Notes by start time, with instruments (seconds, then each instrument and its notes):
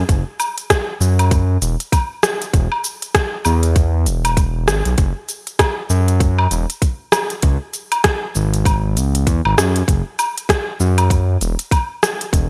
0.09 analog synth bass F#1, kick, closed hi-hat, cabasa
0.40 closed hi-hat, cabasa, low woodblock
0.58 closed hi-hat, cabasa
0.70 kick, cross-stick, closed hi-hat, cabasa
1.00 analog synth bass F#2, cabasa
1.19 closed hi-hat, cabasa, low woodblock
1.31 kick, closed hi-hat, cabasa
1.62 analog synth bass E1, closed hi-hat, cabasa
1.80 closed hi-hat, cabasa
1.92 kick, closed hi-hat, cabasa, low woodblock
2.23 cross-stick, cabasa
2.42 closed hi-hat, cabasa
2.53 analog synth bass E1, kick, closed hi-hat, cabasa
2.72 low woodblock
2.84 closed hi-hat, cabasa
3.02 closed hi-hat, cabasa
3.15 kick, cross-stick, closed hi-hat, cabasa
3.45 analog synth bass E2, cabasa, low woodblock
3.63 closed hi-hat, cabasa
3.76 kick, closed hi-hat, cabasa
4.06 analog synth bass E1, closed hi-hat, cabasa
4.25 closed hi-hat, cabasa, low woodblock
4.37 kick, closed hi-hat, cabasa
4.67 analog synth bass G#1, cross-stick, cabasa
4.85 analog synth bass B1, closed hi-hat, cabasa
4.98 analog synth bass F#1, kick, closed hi-hat, cabasa
5.29 closed hi-hat, cabasa
5.47 closed hi-hat, cabasa
5.59 kick, cross-stick, closed hi-hat, cabasa, low woodblock
5.90 analog synth bass F#2, cabasa
6.08 closed hi-hat, cabasa
6.20 kick, closed hi-hat, cabasa
6.39 low woodblock
6.51 analog synth bass E1, closed hi-hat, cabasa
6.70 closed hi-hat, cabasa
6.82 kick, closed hi-hat, cabasa
7.12 cross-stick, cabasa, low woodblock
7.30 closed hi-hat, cabasa
7.42 analog synth bass C#2, kick, closed hi-hat, cabasa
7.73 closed hi-hat, cabasa
7.92 closed hi-hat, cabasa, low woodblock
8.04 kick, cross-stick, closed hi-hat, cabasa
8.35 analog synth bass G#1, cabasa
8.54 closed hi-hat, cabasa
8.65 kick, closed hi-hat, cabasa, low woodblock
8.96 analog synth bass C#2, closed hi-hat, cabasa
9.15 closed hi-hat, cabasa
9.27 analog synth bass E2, kick, closed hi-hat, cabasa
9.45 analog synth bass G#1, low woodblock
9.57 analog synth bass F#2, cross-stick, cabasa
9.76 closed hi-hat, cabasa
9.88 analog synth bass F#1, kick, closed hi-hat, cabasa
10.19 closed hi-hat, cabasa, low woodblock
10.38 closed hi-hat, cabasa
10.49 kick, cross-stick, closed hi-hat, cabasa
10.80 analog synth bass F#2, cabasa
10.98 closed hi-hat, cabasa, low woodblock
11.10 kick, closed hi-hat, cabasa
11.41 analog synth bass E1, closed hi-hat, cabasa
11.59 closed hi-hat, cabasa
11.71 kick, closed hi-hat, cabasa, low woodblock
12.03 cross-stick, cabasa
12.21 closed hi-hat, cabasa
12.33 analog synth bass E1, kick, closed hi-hat, cabasa